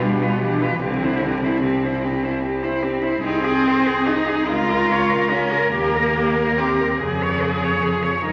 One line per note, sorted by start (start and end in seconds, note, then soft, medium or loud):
0.00 0.81 B2 medium
0.00 0.42 G3 medium
0.00 0.23 D4 medium
0.00 0.23 G4 medium
0.22 0.41 F4 medium
0.22 0.41 B4 medium
0.40 0.82 E3 medium
0.40 0.64 D4 medium
0.40 0.64 G4 medium
0.62 0.82 F4 medium
0.62 0.82 B4 medium
0.80 3.20 C2 medium
0.80 1.64 D3 medium
0.80 1.05 C4 medium
0.80 1.05 G4 medium
1.03 1.24 E4 medium
1.03 1.26 C5 medium
1.23 1.45 C4 medium
1.23 1.45 G4 medium
1.44 1.63 E4 medium
1.44 1.63 C5 soft
1.62 2.03 C3 medium
1.62 1.87 C4 medium
1.62 1.85 G4 medium
1.83 2.06 E4 medium
1.83 2.05 C5 medium
2.03 2.26 C4 medium
2.03 2.26 G4 medium
2.24 2.44 E4 medium
2.24 2.44 C5 medium
2.45 2.65 C4 medium
2.45 2.65 G4 medium
2.64 2.84 E4 medium
2.64 2.85 C5 medium
2.83 3.04 C4 medium
2.83 3.05 G4 medium
3.02 3.23 E4 medium
3.02 3.24 C5 medium
3.23 4.27 C2 medium
3.23 4.08 C4 loud
3.23 3.46 D#4 medium
3.23 4.50 G#4 medium
3.44 3.69 G#4 medium
3.68 3.89 C5 medium
3.87 4.09 G#4 medium
4.06 4.49 D#4 medium
4.06 4.30 D#4 medium
4.28 4.48 G#4 medium
4.47 5.51 C#2 medium
4.47 5.31 F4 loud
4.47 4.72 F4 medium
4.47 7.02 A#4 medium
4.71 4.93 A#4 medium
4.91 5.12 C#5 medium
5.10 5.32 A#4 medium
5.30 5.72 C#4 loud
5.30 5.53 F4 medium
5.52 5.73 A#4 medium
5.72 6.79 D#2 medium
5.72 6.59 A#3 loud
5.72 5.97 G4 medium
5.95 6.17 A#4 medium
6.16 6.37 G4 medium
6.35 6.61 A#4 medium
6.57 7.00 C4 medium
6.57 6.82 G4 medium
6.80 7.00 A#4 medium
7.00 8.05 F2 medium
7.00 7.85 C#3 medium
7.00 8.25 G#4 medium
7.00 7.24 G#4 medium
7.23 7.43 C#5 medium
7.42 7.65 G#4 medium
7.64 7.84 C#5 medium
7.83 8.28 F3 medium
7.83 8.04 G#4 medium
8.03 8.25 C#5 soft
8.26 8.32 D#2 medium
8.26 8.32 G3 loud
8.26 8.32 D#4 medium
8.26 8.32 A#4 medium